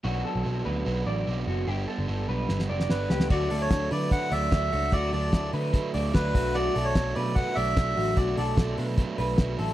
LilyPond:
<<
  \new Staff \with { instrumentName = "Melodica" } { \time 4/4 \key b \minor \tempo 4 = 148 r1 | r2. b'4 | d''8. cis''8. d''8 fis''8 e''4. | d''8 d''4 r4. b'4 |
d''8. cis''8. d''8 fis''8 e''4. | d''8 d''4 r2 r8 | }
  \new Staff \with { instrumentName = "Clean electric guitar" } { \time 4/4 \key b \minor fis'8 a'4 b'4 d''4 fis'8 | g'8 a'4 b'4 d''4 g'8 | fis'8 a'4 b'4 d''4 fis'8 | fis'8 a'4 b'4 d''4 fis'8 |
fis'8 a'4 b'4 d''4 fis'8 | fis'8 a'4 b'4 b'4 a'8 | }
  \new Staff \with { instrumentName = "Overdriven electric guitar" } { \time 4/4 \key b \minor <b, fis b d'>8 <fis b d'>8 <b, fis b d'>8 <fis b d'>8 <b, fis b d'>8 <fis b d'>8 <b, fis b d'>8 <fis b d'>8 | <g, d g b d'>8 <g b d'>8 <d g b d'>8 <g b d'>8 <g, d g b d'>8 <g b d'>8 <d g b d'>8 <g b d'>8 | <d fis a d'>8 <fis a d'>8 <d fis a d'>8 <fis a d'>8 <d fis a d'>8 <fis a d'>8 <d fis a d'>8 <fis a d'>8 | <d fis a d'>8 <fis a d'>8 <d fis a d'>8 <fis a d'>8 <d fis a d'>8 <fis a d'>8 <d fis a d'>8 <fis a d'>8 |
<b, fis a d'>8 <fis a d'>8 <b, fis a d'>8 <fis a d'>8 <b, fis a d'>8 <fis a d'>8 <b, fis a d'>8 <fis a d'>8 | <b, fis a d'>8 <fis a d'>8 <b, fis a d'>8 <fis a d'>8 <b, fis a d'>8 <fis a d'>8 <b, fis a d'>8 <fis a d'>8 | }
  \new Staff \with { instrumentName = "Picked electric bass" } { \clef bass \time 4/4 \key b \minor b,,8 r16 b,,16 b,,8 d,8 b,,8 a,,8 b,,8 fis,,8 | g,,8 r16 g,,16 g,,8 b,,8 g,,8 fis,,8 g,,8 cis,8 | d,8 d,8 d,8 d8. r16 d,8 d,8 cis,8 | d,8 d,8 d,8 d8. r16 d,8 d,8 b,,8~ |
b,,8 b,,8 b,,8 b,8. r16 b,,8 b,,8 a,,8 | b,,8 b,,8 b,,8 b,8. r16 b,,8 b,,8 a,,8 | }
  \new DrumStaff \with { instrumentName = "Drums" } \drummode { \time 4/4 r4 r4 r4 r4 | r4 r4 sn16 sn8 sn16 sn8 sn16 sn16 | <cymc bd>8 hho8 <hh bd sn>8 hho8 <hh bd>8 hho8 <hh bd sn>8 hho8 | <hh bd>8 hho8 <hh bd sn>8 hho8 <hh bd>8 hho8 <hh bd sn>8 <hho bd>8 |
hh8 hho8 <hh bd sn>8 hho8 <hh bd>8 hho8 <hh bd sn>8 hho8 | <hh bd>8 hho8 <hh bd sn>8 hho8 <hh bd>8 hho8 <hh bd sn>8 hho8 | }
>>